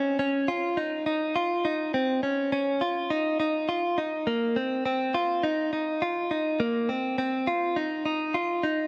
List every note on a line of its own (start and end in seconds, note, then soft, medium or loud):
0.00 0.18 C#4 medium
0.19 0.48 C#4 medium
0.48 0.77 F4 medium
0.77 1.05 D#4 medium
1.06 1.35 D#4 medium
1.36 1.65 F4 medium
1.65 1.94 D#4 medium
1.94 2.23 C4 medium
2.23 2.51 C#4 medium
2.52 2.81 C#4 medium
2.81 3.10 F4 medium
3.10 3.38 D#4 medium
3.40 3.69 D#4 medium
3.69 3.98 F4 medium
3.98 4.27 D#4 medium
4.27 4.56 A#3 medium
4.56 4.84 C4 medium
4.86 5.14 C4 medium
5.14 5.43 F4 medium
5.43 5.72 D#4 medium
5.73 6.02 D#4 medium
6.02 6.31 F4 medium
6.31 6.60 D#4 medium
6.60 6.89 A#3 medium
6.89 7.17 C4 medium
7.18 7.47 C4 medium
7.47 7.76 F4 medium
7.76 8.04 D#4 medium
8.06 8.35 D#4 medium
8.34 8.64 F4 medium
8.63 8.87 D#4 medium